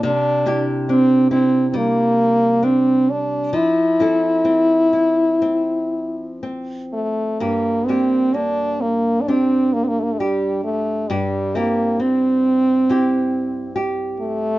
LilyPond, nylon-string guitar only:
\new Staff \with { instrumentName = "Nylon-string guitar" } { \time 4/4 \key g \dorian \tempo 4 = 66 c8 <d' e' g'>8 d'8 e'8 g4 d'4 | f8 <c' e' a'>8 c'8 e'8 c'4 c'4 | <g, g'>8 <bes d' g'>8 bes4 <d' g'>4 g'4 | <g, g'>8 <c' e' g'>8 c'4 <c' e' g'>4 g'4 | }